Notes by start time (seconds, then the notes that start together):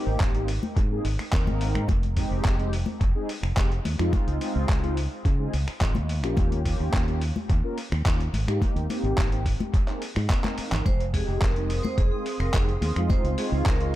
Already playing: A#3 C4 D#4 G4
0.07 G#1
0.20 kick, clap, closed hi-hat
0.34 A#3 C4 D#4 G4, closed hi-hat
0.48 open hi-hat
0.63 high conga
0.77 G#2, kick, closed hi-hat
0.91 A#3 C4 D#4 G#4
1.05 G#1, open hi-hat
1.19 finger snap, open hi-hat
1.32 D#2 A#3 C4 D#4 A#4, kick, clap, closed hi-hat
1.47 G#1, closed hi-hat, high conga
1.61 open hi-hat
1.75 G#2, finger snap, closed hi-hat
1.89 F1, kick, closed hi-hat, high conga
2.03 closed hi-hat
2.16 G#3 C4 D#4 G4, kick, open hi-hat
2.31 F1
2.45 F1, kick, clap, closed hi-hat
2.58 G#3 C4 D#4 G4, closed hi-hat
2.73 open hi-hat
2.86 high conga
3.01 F1, kick, closed hi-hat
3.15 G#3 C4 D#4 G#4
3.29 open hi-hat
3.43 F1, finger snap
3.56 F1 G#3 C4 D#4 G4, kick, clap, closed hi-hat
3.72 closed hi-hat
3.85 D#2, open hi-hat, high conga
3.98 F2 G#3 C4 D#4 F4, finger snap, closed hi-hat
4.13 muted fingered electric bass stroke, kick, closed hi-hat, high conga
4.27 C#2, closed hi-hat
4.40 G#3 C4 D#4 F4, open hi-hat
4.56 C#2
4.69 kick, clap, closed hi-hat
4.83 G#3 C4 D#4 F4, closed hi-hat
4.97 open hi-hat
5.25 C#3, kick, closed hi-hat
5.39 G#3 C4 D#4 G#4
5.54 C#2, open hi-hat
5.68 finger snap, open hi-hat
5.80 G#1 G#3 C4 D#4 F4, kick, clap, closed hi-hat
5.95 D#2, closed hi-hat, high conga
6.09 open hi-hat
6.23 A#1 A#3 C#4 F4 G4, finger snap, closed hi-hat
6.37 D#2, kick, closed hi-hat, high conga
6.52 closed hi-hat
6.65 A#3 C#4 F4 G4, kick, open hi-hat
6.80 D#2
6.93 D#2, kick, clap, closed hi-hat
7.07 A#3 C#4 F4 G4, closed hi-hat
7.21 open hi-hat
7.36 high conga
7.50 D#2, kick, closed hi-hat
7.63 A#3 C#4 F4 A#4
7.78 open hi-hat
7.92 D#2, finger snap
8.05 D#2 A#3 C#4 F4 G4, kick, clap, closed hi-hat
8.20 closed hi-hat
8.33 G#1, open hi-hat, high conga
8.47 G#2 A#3 C4 D#4 G4, finger snap, closed hi-hat
8.62 muted fingered electric bass stroke, kick, closed hi-hat, high conga
8.76 D#2, closed hi-hat
8.89 A#3 C4 D#4 G4, open hi-hat, high conga
9.03 G#1, closed hi-hat
9.18 G#1, kick, clap, closed hi-hat
9.31 A#3 C4 D#4 G4, closed hi-hat
9.46 kick, open hi-hat
9.60 closed hi-hat, high conga
9.74 kick, closed hi-hat
9.87 A#3 C4 D#4 G#4, clap, closed hi-hat
10.02 open hi-hat
10.16 G#2, finger snap, open hi-hat
10.29 A#3 C4 D#4 A#4, kick, clap, closed hi-hat
10.44 clap, closed hi-hat, high conga
10.58 muted fingered electric bass stroke, open hi-hat
10.72 G#1, clap, closed hi-hat, low conga
10.86 F1 C4 C5 F5 C6 D#6, kick, closed hi-hat, high conga
11.00 closed hi-hat
11.13 G#3 C4 D#4 G4 G#4, kick, open hi-hat
11.28 F1
11.42 F1 A#4, kick, clap, closed hi-hat
11.56 G#3 C4 D#4 G4, closed hi-hat
11.70 open hi-hat
11.83 C5, high conga
11.98 F1 G#4, kick, closed hi-hat
12.12 G#3 C4 D#4 G#4
12.26 open hi-hat
12.40 F1 A#4, finger snap
12.53 G#3 C4 D#4 G4 G#4, kick, clap, closed hi-hat
12.69 closed hi-hat
12.81 D#2, open hi-hat, high conga
12.96 F2 G#3 C4 D#4 F4, finger snap, closed hi-hat
13.09 C5 C#6, muted fingered electric bass stroke, kick, closed hi-hat, high conga
13.24 C#2, closed hi-hat
13.38 G#3 C4 D#4 F4 G#4, open hi-hat
13.52 C#2
13.65 C#2 A#4, kick, clap, closed hi-hat
13.80 G#3 C4 D#4 F4, closed hi-hat